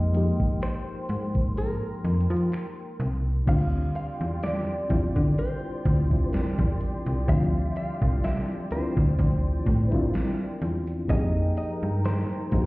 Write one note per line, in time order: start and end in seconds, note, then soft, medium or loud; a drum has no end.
0.00 0.32 F2 loud
0.00 0.13 F3 medium
0.00 0.14 G#3 medium
0.00 0.15 A#3 medium
0.00 0.16 D#4 medium
0.00 0.10 G4 medium
0.00 3.18 A#4 medium
0.00 0.58 D#5 loud
0.00 3.19 G5 medium
0.00 3.16 C6 medium
0.13 1.82 F3 medium
0.13 1.82 G#3 medium
0.13 1.83 A#3 medium
0.13 1.83 D#4 medium
0.13 closed hi-hat medium
0.17 1.84 G4 medium
0.40 0.49 G#2 soft
0.40 kick medium
0.62 1.60 C5 medium
0.62 finger snap loud
0.62 closed hi-hat medium
1.09 1.75 G#2 medium
1.09 closed hi-hat medium
1.35 kick medium
1.57 2.96 A#4 medium
1.57 closed hi-hat medium
2.04 2.27 F2 medium
2.04 closed hi-hat medium
2.21 closed hi-hat medium
2.30 2.50 F3 loud
2.36 closed hi-hat medium
2.52 finger snap loud
2.52 closed hi-hat medium
3.00 3.42 C2 loud
3.00 closed hi-hat medium
3.46 3.90 D2 loud
3.46 4.73 D3 medium
3.46 4.74 G3 medium
3.46 4.74 C4 medium
3.46 4.75 D4 medium
3.46 10.85 G4 medium
3.46 10.86 D5 medium
3.46 3.95 F5 loud
3.46 10.83 G5 medium
3.46 10.79 C6 medium
3.46 kick loud
3.46 closed hi-hat medium
3.46 crash medium
3.50 4.75 F4 medium
3.95 4.43 F5 loud
3.95 closed hi-hat medium
4.21 4.63 E2 medium
4.43 5.34 D5 medium
4.43 snare medium
4.43 closed hi-hat medium
4.89 5.13 E2 loud
4.89 5.95 G3 medium
4.89 5.95 C4 medium
4.89 5.96 D4 medium
4.89 5.95 E4 medium
4.89 kick loud
4.89 closed hi-hat medium
4.93 5.97 F4 medium
5.16 5.35 D3 loud
5.16 kick medium
5.38 6.32 C5 medium
5.38 closed hi-hat medium
5.85 6.28 D2 medium
5.85 kick loud
5.85 closed hi-hat medium
6.10 7.14 G3 medium
6.10 7.15 C4 medium
6.10 7.15 D4 medium
6.10 7.14 E4 medium
6.10 7.16 F4 medium
6.10 kick medium
6.32 6.43 E2 soft
6.32 6.77 A#4 medium
6.32 snare medium
6.32 closed hi-hat medium
6.59 6.78 E2 medium
6.59 kick medium
6.81 closed hi-hat medium
7.06 7.26 C2 medium
7.06 closed hi-hat soft
7.27 7.71 D2 loud
7.27 8.54 F3 medium
7.27 8.55 G3 medium
7.27 8.55 C4 medium
7.27 8.56 D4 medium
7.27 7.65 F5 loud
7.27 kick loud
7.27 closed hi-hat medium
7.31 8.56 F4 medium
7.65 7.76 E5 loud
7.76 8.24 F5 loud
7.76 closed hi-hat medium
8.02 8.21 C2 medium
8.02 kick medium
8.24 8.37 E5 loud
8.24 snare loud
8.24 closed hi-hat medium
8.70 8.82 D2 soft
8.70 9.76 G3 medium
8.70 9.76 C4 medium
8.70 9.77 D4 medium
8.70 9.75 E4 medium
8.70 9.77 F4 medium
8.70 9.94 C5 medium
8.70 closed hi-hat medium
8.97 9.16 D2 medium
8.97 kick medium
9.19 9.61 D2 medium
9.19 kick loud
9.19 closed hi-hat medium
9.66 9.89 A2 medium
9.66 kick loud
9.66 closed hi-hat medium
9.91 10.95 G3 medium
9.91 10.96 C4 medium
9.91 10.96 D4 medium
9.91 10.95 E4 medium
9.91 10.97 F4 loud
9.91 10.58 A#4 medium
9.91 kick medium
10.14 snare loud
10.14 closed hi-hat medium
10.62 11.04 E2 medium
10.62 closed hi-hat medium
10.87 closed hi-hat medium
11.08 11.52 F2 loud
11.08 12.35 F3 medium
11.08 12.36 A#3 medium
11.08 12.66 D#4 medium
11.08 12.37 D#4 medium
11.08 12.36 G#4 medium
11.08 12.66 A#4 medium
11.08 11.54 D#5 loud
11.08 12.66 G5 medium
11.08 12.66 A#5 medium
11.08 kick loud
11.08 closed hi-hat medium
11.12 12.37 G4 medium
11.57 11.71 D#5 loud
11.57 closed hi-hat medium
11.83 12.25 G2 medium
12.05 12.66 C5 loud
12.05 snare medium
12.05 closed hi-hat medium
12.51 12.66 G2 medium
12.51 12.66 F3 medium
12.51 12.66 G#3 medium
12.51 12.66 A#3 medium
12.51 12.66 D#4 medium
12.51 12.61 F#4 medium
12.51 kick medium
12.51 closed hi-hat medium
12.61 12.66 G4 medium